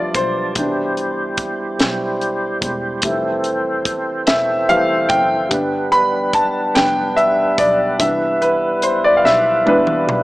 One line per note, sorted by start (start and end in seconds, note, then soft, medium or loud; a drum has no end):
0.00 0.11 F1 medium
0.00 0.58 F3 soft
0.00 3.01 G3 medium
0.00 0.58 A3 soft
0.00 0.58 B3 medium
0.00 0.54 D4 medium
0.00 0.54 F4 soft
0.00 0.54 D5 medium
0.00 0.58 D5 medium
0.00 0.58 E5 medium
0.00 0.58 F5 medium
0.14 0.53 B1 medium
0.14 2.18 C5 medium
0.14 kick medium
0.14 closed hi-hat medium
0.55 1.76 C2 medium
0.55 1.77 B2 soft
0.55 1.77 E3 soft
0.55 1.77 D4 medium
0.55 3.02 E4 medium
0.55 3.02 G4 medium
0.55 5.49 C5 soft
0.55 kick loud
0.55 closed hi-hat medium
0.97 closed hi-hat soft
1.37 kick medium
1.37 closed hi-hat medium
1.79 2.58 B1 medium
1.79 snare medium
1.79 closed hi-hat medium
2.21 closed hi-hat soft
2.62 3.00 E1 medium
2.62 kick medium
2.62 closed hi-hat medium
3.02 4.24 F1 medium
3.02 5.50 E3 medium
3.02 4.24 G3 soft
3.02 4.24 A3 soft
3.02 5.50 C4 medium
3.02 4.24 E4 medium
3.02 5.50 A4 medium
3.02 kick loud
3.02 closed hi-hat medium
3.44 closed hi-hat soft
3.85 kick medium
3.85 closed hi-hat medium
4.27 5.07 E1 medium
4.27 4.70 E5 medium
4.27 snare medium
4.27 closed hi-hat medium
4.69 5.07 E3 medium
4.69 5.06 G3 soft
4.69 5.07 A3 soft
4.69 5.08 F5 medium
4.69 closed hi-hat soft
5.09 5.48 F#1 medium
5.09 5.88 G5 loud
5.09 kick medium
5.09 closed hi-hat medium
5.49 6.72 G1 medium
5.49 6.73 G3 soft
5.49 6.73 B3 soft
5.49 6.73 D4 medium
5.49 kick loud
5.49 closed hi-hat medium
5.54 10.23 G3 medium
5.54 7.99 B3 medium
5.54 7.99 D4 medium
5.54 10.23 B4 medium
5.92 6.35 B5 loud
5.92 closed hi-hat soft
6.33 6.77 A5 medium
6.33 kick medium
6.33 closed hi-hat medium
6.74 7.55 F1 medium
6.74 7.12 G3 soft
6.74 7.13 B3 soft
6.74 7.13 D4 medium
6.74 7.18 G5 medium
6.74 snare medium
6.74 closed hi-hat medium
7.16 7.60 E5 medium
7.16 closed hi-hat soft
7.58 7.97 B1 medium
7.58 7.97 D5 medium
7.58 kick medium
7.58 closed hi-hat medium
7.98 9.20 C2 loud
7.98 9.63 E3 medium
7.98 9.64 B3 soft
7.98 10.23 B3 medium
7.98 9.65 D4 medium
7.98 8.43 E5 medium
7.98 kick loud
7.98 closed hi-hat medium
8.03 10.23 E4 medium
8.42 8.80 B4 medium
8.42 closed hi-hat soft
8.82 9.04 C5 medium
8.82 closed hi-hat medium
9.04 9.18 D5 medium
9.17 9.24 F5 medium
9.24 10.03 B1 medium
9.24 9.67 E5 medium
9.24 snare medium
9.65 10.03 E3 medium
9.65 10.03 B3 soft
9.65 10.03 D4 medium
9.65 10.23 B4 medium
9.65 high tom medium
9.87 mid tom medium
10.07 10.23 B1 loud
10.07 mid tom medium